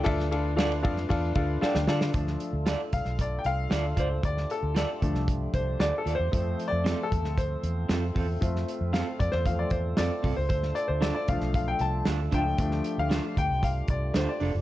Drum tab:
RD |x-x-xxx-x-x-----|----------------|----------------|----------------|
HH |----------------|x-x-x-x-x-x-x-x-|x-x-x-x-x-x-x-x-|x-x-x-x-x-x-x-o-|
SD |-o--o--o----oooo|-o--o--o----o---|-o--o--o----o---|----o--o----o---|
BD |o-----o-o-o-----|o-----o-o-----o-|o-----o-o-o-----|o-----o-o-----o-|

RD |----------------|----------------|----------------|
HH |x-x-x-x-x-x-x-o-|x-x-x-x-x-x-x-x-|x-x-x-x-x-x-x-o-|
SD |-o--o--o----o---|-o--o--o----o---|-o--o-------o---|
BD |o-----o-o-o---o-|o-----o-o-----o-|o-----o-o-o-----|